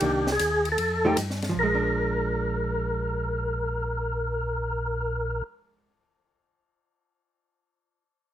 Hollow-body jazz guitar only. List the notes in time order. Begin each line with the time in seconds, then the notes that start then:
0.01 D#3 A#3 D4
1.05 F3 A3 D#4 G4
1.49 F3
1.63 G#3
1.75 D4